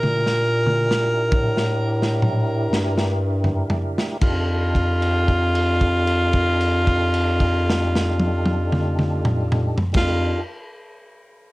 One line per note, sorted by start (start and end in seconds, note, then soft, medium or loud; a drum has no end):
0.00 1.27 A#2 medium
0.00 4.17 D4 medium
0.00 4.17 E4 medium
0.00 4.17 G4 medium
0.00 3.16 A#4 medium
0.00 4.18 A#4 medium
0.00 mid tom medium
0.26 snare medium
0.67 mid tom medium
0.91 snare medium
1.32 2.66 A2 medium
1.32 kick loud
1.32 mid tom medium
1.57 snare medium
2.02 snare medium
2.22 mid tom medium
2.70 3.81 G2 medium
2.70 snare medium
2.98 snare medium
3.44 floor tom medium
3.70 floor tom medium
3.98 snare medium
4.21 9.78 F2 medium
4.21 9.79 D4 medium
4.21 9.79 D#4 medium
4.21 9.79 F4 medium
4.21 9.79 G4 medium
4.21 9.78 A4 medium
4.21 kick medium
4.21 crash medium
4.75 kick medium
4.75 crash soft
5.02 crash soft
5.28 kick soft
5.28 crash soft
5.55 crash soft
5.81 kick medium
5.81 crash soft
6.07 crash soft
6.33 kick medium
6.33 crash soft
6.61 crash soft
6.87 kick medium
6.87 crash soft
7.14 crash soft
7.40 kick medium
7.40 crash soft
7.70 snare medium
7.95 snare medium
8.20 high tom medium
8.46 high tom medium
8.72 mid tom medium
8.99 mid tom medium
9.25 mid tom medium
9.52 mid tom medium
9.78 floor tom medium
9.92 10.39 F2 medium
9.92 10.42 D4 medium
9.92 10.42 D#4 medium
9.92 10.41 G4 medium
9.92 10.42 A4 medium
9.92 kick medium
9.92 crash medium
9.97 10.40 F4 medium
9.97 snare medium